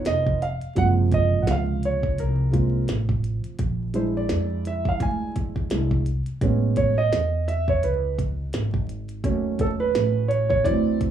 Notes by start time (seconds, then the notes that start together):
Already playing: B3 D#4 F4
0.05 F1 D#5, snare, closed hi-hat
0.26 kick
0.42 F5, closed hi-hat
0.61 muted upright bass stroke, closed hi-hat
0.75 F#1 C3 F3 G#3 A#3 F#5, kick, closed hi-hat
1.12 D#5, kick, closed hi-hat
1.42 F#5
1.47 C#2 F5, snare, closed hi-hat
1.83 C#5, closed hi-hat
2.03 kick
2.18 C2 A#4, closed hi-hat
2.52 G#3 A#3 C4 F4, kick, closed hi-hat
2.88 A1, snare, closed hi-hat
3.09 kick
3.24 closed hi-hat
3.44 muted upright bass stroke, closed hi-hat
3.59 A#1, kick, closed hi-hat
3.94 G#3 D4 E4 C5, closed hi-hat
4.17 D5
4.29 F2, snare, closed hi-hat
4.65 E5, closed hi-hat
4.85 F5, kick
5.00 D2 G#5, kick, closed hi-hat
5.36 kick, closed hi-hat
5.56 kick
5.70 C2 G#3 D4 E4, snare, closed hi-hat
5.91 kick
6.06 closed hi-hat
6.26 muted upright bass stroke, closed hi-hat
6.41 A1 G#3 B3 C#4, kick, closed hi-hat
6.76 C#5, kick, closed hi-hat
6.98 D#5
7.12 E2, snare, closed hi-hat
7.48 E5, closed hi-hat
7.68 C#5, kick
7.83 C#2 B4, closed hi-hat
8.19 kick, closed hi-hat
8.53 G#1, snare, closed hi-hat
8.74 kick
8.89 closed hi-hat
9.09 closed hi-hat
9.24 D#2 F#3 A3 C#4, kick, closed hi-hat
9.59 A4, kick, closed hi-hat
9.80 B4
9.95 A1, snare, closed hi-hat
10.28 C#5, closed hi-hat
10.49 C#5, kick
10.64 D2 E3 F#3 C4 D5, kick, closed hi-hat
11.01 kick, closed hi-hat